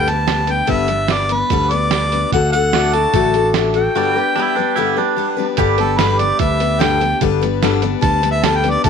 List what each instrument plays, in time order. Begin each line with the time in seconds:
Already playing: fingered electric bass D2, harmonica G5
0.06 steel-string acoustic guitar G3 B3 D4 B4, harmonica A5, closed hi-hat
0.27 steel-string acoustic guitar G3 B3 D4 B4, snare, closed hi-hat
0.47 steel-string acoustic guitar G3 B3 D4 B4, harmonica G5, closed hi-hat
0.67 fingered electric bass G1, steel-string acoustic guitar G2 D3 G3 B3 D4 B4, harmonica E5, kick, closed hi-hat
0.88 steel-string acoustic guitar G3 B3 D4 B4, closed hi-hat
1.08 steel-string acoustic guitar G3 B3 D4 B4, snare, closed hi-hat
1.13 harmonica D5
1.29 steel-string acoustic guitar G3 B3 D4 B4, harmonica B4, closed hi-hat
1.50 fingered electric bass D2, steel-string acoustic guitar G2 D3 G3 B3 D4 B4, kick, closed hi-hat
1.71 steel-string acoustic guitar G3 B3 D4 B4, harmonica D5, closed hi-hat
1.91 steel-string acoustic guitar G3 B3 D4 B4, snare, closed hi-hat
2.12 steel-string acoustic guitar G3 B3 D4 B4, closed hi-hat
2.32 fingered electric bass D2, steel-string acoustic guitar D3 A3 D4 F#4 A4, harmonica F#5, kick, closed hi-hat
2.52 steel-string acoustic guitar D4 F#4 A4, harmonica F#5, closed hi-hat
2.73 steel-string acoustic guitar A3 D4 F#4 A4, pedal steel guitar F#4 A4 D5, snare, closed hi-hat
2.93 steel-string acoustic guitar D4 F#4 A4, harmonica A5, closed hi-hat
3.13 fingered electric bass A1, steel-string acoustic guitar D3 A3 D4 F#4 A4, kick, closed hi-hat
3.34 steel-string acoustic guitar F#4 A4, closed hi-hat
3.39 steel-string acoustic guitar D4
3.54 steel-string acoustic guitar A3 D4 F#4 A4, snare, closed hi-hat
3.74 steel-string acoustic guitar D4 F#4 A4, harmonica G5, closed hi-hat
3.95 steel-string acoustic guitar G2 D3 G3 B3 D4 B4, pedal steel guitar F#4 A4 D5
4.16 steel-string acoustic guitar G3 B3 D4 B4, pedal steel guitar G4
4.22 pedal steel guitar B4
4.35 steel-string acoustic guitar G3 B3 D4 B4, clean electric guitar E4
4.56 steel-string acoustic guitar G3 B3 D4 B4
4.76 steel-string acoustic guitar G2 D3 G3 B3 D4 B4, clean electric guitar E4
4.96 steel-string acoustic guitar G3 B3 D4 B4
5.16 steel-string acoustic guitar G3 B3 D4 B4
5.37 steel-string acoustic guitar G3 B3 D4 B4
5.57 fingered electric bass G1, steel-string acoustic guitar G2 D3 G3 B3 D4 B4, pedal steel guitar G4 B4 D5, kick, closed hi-hat
5.77 steel-string acoustic guitar G3 B3 D4 B4, harmonica A4, closed hi-hat
5.98 steel-string acoustic guitar G2 D3 G3 B3 D4 B4, harmonica B4, snare, closed hi-hat
6.19 steel-string acoustic guitar G3 B3 D4 B4, harmonica D5, closed hi-hat
6.39 fingered electric bass D2, steel-string acoustic guitar G3 B3 D4 B4, harmonica E5, kick, closed hi-hat
6.60 steel-string acoustic guitar G3 B3 D4 B4, closed hi-hat
6.79 steel-string acoustic guitar G2 D3 G3 B3 D4 B4, harmonica G5, snare, closed hi-hat
7.00 steel-string acoustic guitar G3 B3 D4 B4, closed hi-hat
7.21 fingered electric bass G1, steel-string acoustic guitar G2 D3 G3 B3 D4 B4, kick, closed hi-hat
7.41 steel-string acoustic guitar G3 B3 D4 B4, closed hi-hat
7.62 steel-string acoustic guitar G2 D3 G3 B3 D4 B4, snare, closed hi-hat
7.82 steel-string acoustic guitar G3 B3 D4 B4, closed hi-hat
8.01 fingered electric bass D2, steel-string acoustic guitar G3 B3 D4 B4, harmonica A5, kick, closed hi-hat
8.22 steel-string acoustic guitar G3 B3 D4 B4, closed hi-hat
8.31 harmonica E5
8.43 steel-string acoustic guitar G2 D3 G3 B3 D4 B4, harmonica A5, snare, closed hi-hat
8.57 harmonica G5
8.64 steel-string acoustic guitar G3 B3 D4 B4, closed hi-hat
8.70 harmonica D5
8.84 fingered electric bass D2, steel-string acoustic guitar D3 A3 D4 F#4 A4, harmonica A5, kick, closed hi-hat